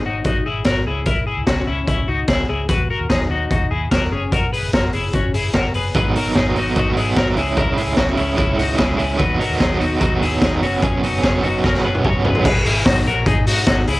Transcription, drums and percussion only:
0.24 kick loud
0.24 closed hi-hat medium
0.64 kick medium
0.64 snare medium
0.64 closed hi-hat medium
1.06 kick loud
1.06 closed hi-hat medium
1.47 kick medium
1.47 snare loud
1.47 closed hi-hat medium
1.87 kick medium
1.87 closed hi-hat medium
2.28 kick medium
2.28 snare medium
2.28 closed hi-hat medium
2.69 kick loud
2.69 closed hi-hat medium
3.10 kick medium
3.10 snare medium
3.10 closed hi-hat medium
3.50 kick loud
3.50 closed hi-hat medium
3.91 kick medium
3.91 snare medium
3.91 closed hi-hat medium
4.32 kick loud
4.32 closed hi-hat medium
4.53 open hi-hat medium
4.73 kick loud
4.73 snare medium
4.73 closed hi-hat medium
4.93 open hi-hat medium
5.13 kick medium
5.13 closed hi-hat medium
5.34 open hi-hat medium
5.53 kick medium
5.53 snare medium
5.53 closed hi-hat medium
5.74 open hi-hat medium
5.94 kick loud
5.94 closed hi-hat medium
6.15 open hi-hat medium
6.35 kick medium
6.35 snare medium
6.35 closed hi-hat medium
6.56 open hi-hat medium
6.76 kick loud
6.76 closed hi-hat medium
6.97 open hi-hat medium
7.16 kick medium
7.16 snare medium
7.16 closed hi-hat medium
7.37 open hi-hat medium
7.57 kick loud
7.57 closed hi-hat medium
7.77 open hi-hat medium
7.97 kick medium
7.97 snare loud
7.97 closed hi-hat medium
8.17 open hi-hat medium
8.38 kick loud
8.38 closed hi-hat medium
8.59 open hi-hat medium
8.78 kick medium
8.78 snare medium
8.78 closed hi-hat medium
8.99 open hi-hat medium
9.19 kick loud
9.19 closed hi-hat medium
9.41 open hi-hat medium
9.60 kick loud
9.60 snare loud
9.60 closed hi-hat medium
9.81 open hi-hat medium
10.00 kick loud
10.00 closed hi-hat medium
10.22 open hi-hat medium
10.41 kick medium
10.41 snare medium
10.41 closed hi-hat medium
10.63 open hi-hat medium
10.83 kick loud
10.83 closed hi-hat medium
11.03 open hi-hat medium
11.24 kick medium
11.24 snare loud
11.24 closed hi-hat medium
11.43 open hi-hat medium
11.64 kick loud
11.64 snare soft
11.74 snare soft
11.95 high tom medium
12.05 kick medium
12.05 mid tom medium
12.25 floor tom medium
12.35 floor tom medium
12.45 kick loud
12.45 crash loud
12.65 hi-hat pedal medium
12.65 open hi-hat medium
12.86 kick loud
12.86 snare loud
12.86 hi-hat pedal medium
12.86 open hi-hat medium
13.06 hi-hat pedal medium
13.06 open hi-hat medium
13.26 kick loud
13.26 hi-hat pedal medium
13.26 open hi-hat medium
13.46 hi-hat pedal medium
13.46 open hi-hat medium
13.66 kick loud
13.66 snare loud
13.66 hi-hat pedal medium
13.66 open hi-hat medium
13.87 hi-hat pedal medium
13.87 open hi-hat medium

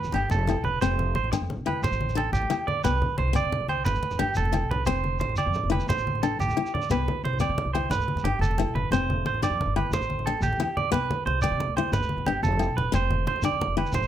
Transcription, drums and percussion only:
0.04 low conga medium
0.04 shekere soft
0.12 muted conga medium
0.12 low conga soft
0.12 low agogo medium
0.30 high conga medium
0.30 shekere medium
0.39 low conga medium
0.47 muted conga medium
0.47 low agogo medium
0.47 shekere soft
0.55 low conga soft
0.64 high conga medium
0.64 low conga medium
0.82 muted conga medium
0.82 low agogo medium
0.82 shekere medium
0.99 high conga medium
0.99 low conga medium
1.15 muted conga medium
1.24 low conga medium
1.33 high conga medium
1.33 low conga soft
1.33 low agogo medium
1.33 shekere medium
1.42 low conga soft
1.50 muted conga medium
1.50 low conga medium
1.59 low conga soft
1.67 high conga medium
1.67 low agogo medium
1.76 low conga soft
1.83 muted conga medium
1.83 low conga medium
1.83 shekere medium
1.92 low conga soft
1.92 shekere soft
2.01 high conga medium
2.01 low conga soft
2.09 low conga medium
2.09 shekere soft
2.18 muted conga medium
2.18 low conga soft
2.18 low agogo medium
2.33 high conga medium
2.33 shekere medium
2.41 low conga medium
2.50 muted conga medium
2.50 low agogo medium
2.50 shekere soft
2.59 low conga soft
2.68 high conga medium
2.68 low conga medium
2.84 muted conga medium
2.84 low agogo medium
2.84 shekere medium
3.02 high conga medium
3.02 low conga medium
3.18 muted conga medium
3.28 low conga medium
3.35 high conga medium
3.35 low conga soft
3.35 low agogo medium
3.35 shekere medium
3.44 low conga soft
3.52 muted conga medium
3.52 low conga medium
3.60 low conga soft
3.68 high conga medium
3.68 low agogo medium
3.78 low conga soft
3.85 muted conga medium
3.85 low conga medium
3.85 shekere medium
3.95 low conga soft
3.95 shekere soft
4.03 high conga medium
4.03 low conga soft
4.11 low conga medium
4.11 shekere soft
4.19 muted conga medium
4.19 low conga soft
4.19 low agogo medium
4.35 high conga medium
4.35 shekere medium
4.45 low conga medium
4.53 muted conga medium
4.53 low agogo medium
4.53 shekere soft
4.62 low conga soft
4.71 high conga medium
4.71 low conga medium
4.86 muted conga medium
4.86 low agogo medium
4.86 shekere medium
5.04 high conga medium
5.19 muted conga medium
5.19 low conga soft
5.19 shekere soft
5.29 low conga medium
5.36 high conga medium
5.36 low conga soft
5.36 low agogo medium
5.36 shekere medium
5.54 low conga medium
5.54 shekere soft
5.72 high conga loud
5.72 low agogo medium
5.80 low conga soft
5.80 shekere soft
5.89 muted conga medium
5.89 low conga medium
5.89 shekere medium
5.98 shekere soft
6.07 high conga medium
6.15 low conga medium
6.23 muted conga medium
6.23 low agogo medium
6.23 shekere soft
6.32 low conga soft
6.40 high conga medium
6.40 shekere medium
6.49 low conga medium
6.49 shekere soft
6.57 muted conga medium
6.57 low agogo medium
6.66 shekere soft
6.75 high conga medium
6.75 low conga medium
6.82 low conga soft
6.82 shekere soft
6.90 muted conga loud
6.90 low agogo medium
6.90 shekere medium
7.08 high conga medium
7.08 low conga medium
7.25 muted conga medium
7.33 low conga medium
7.39 high conga medium
7.39 low conga soft
7.39 low agogo medium
7.39 shekere medium
7.49 low conga soft
7.58 muted conga medium
7.58 low conga medium
7.67 low conga soft
7.75 high conga medium
7.75 low agogo medium
7.83 low conga soft
7.91 muted conga medium
7.91 low conga medium
7.91 shekere medium
8.00 low conga soft
8.00 shekere soft
8.08 high conga medium
8.08 low conga soft
8.17 low conga medium
8.17 shekere soft
8.25 muted conga medium
8.25 low conga soft
8.25 low agogo medium
8.42 high conga medium
8.42 shekere medium
8.51 low conga medium
8.58 muted conga medium
8.58 low agogo medium
8.58 shekere soft
8.68 low conga soft
8.75 high conga loud
8.75 low conga medium
8.92 muted conga medium
8.92 low agogo medium
8.92 shekere medium
9.10 high conga medium
9.10 low conga medium
9.26 muted conga loud
9.34 low conga medium
9.42 high conga medium
9.42 low conga soft
9.42 low agogo medium
9.42 shekere medium
9.52 low conga soft
9.61 muted conga medium
9.61 low conga medium
9.70 low conga soft
9.76 high conga medium
9.76 low agogo medium
9.86 low conga soft
9.93 muted conga loud
9.93 low conga loud
9.93 shekere medium
10.02 low conga soft
10.02 shekere soft
10.10 high conga medium
10.19 low conga medium
10.27 muted conga medium
10.27 low conga soft
10.27 low agogo medium
10.42 high conga medium
10.42 shekere medium
10.53 low conga medium
10.60 muted conga medium
10.60 low agogo medium
10.60 shekere soft
10.69 low conga soft
10.77 high conga medium
10.77 low conga medium
10.92 muted conga medium
10.92 low agogo medium
10.92 shekere medium
11.11 high conga medium
11.11 low conga medium
11.27 muted conga medium
11.42 high conga medium
11.42 low conga soft
11.42 low agogo medium
11.42 shekere medium
11.52 low conga soft
11.60 muted conga medium
11.60 low conga medium
11.68 low conga soft
11.77 high conga medium
11.77 low agogo medium
11.85 low conga soft
11.93 muted conga medium
11.93 low conga medium
11.93 shekere medium
12.01 low conga soft
12.01 shekere soft
12.09 high conga medium
12.09 low conga soft
12.18 low conga medium
12.26 muted conga medium
12.26 low conga soft
12.26 low agogo medium
12.44 high conga medium
12.44 shekere medium
12.52 low conga medium
12.60 low agogo medium
12.60 shekere soft
12.70 low conga soft
12.78 high conga medium
12.78 low conga medium
12.94 muted conga loud
12.94 low conga soft
12.94 low agogo medium
12.94 shekere medium
13.10 high conga medium
13.10 low conga medium
13.19 low conga soft
13.27 muted conga medium
13.36 low conga medium
13.42 high conga medium
13.42 low agogo medium
13.42 shekere medium
13.61 muted conga medium
13.61 low conga medium
13.78 high conga medium
13.78 low conga soft
13.78 low agogo medium
13.86 shekere soft
13.93 muted conga loud
13.93 low conga loud
13.93 shekere medium
14.02 shekere soft

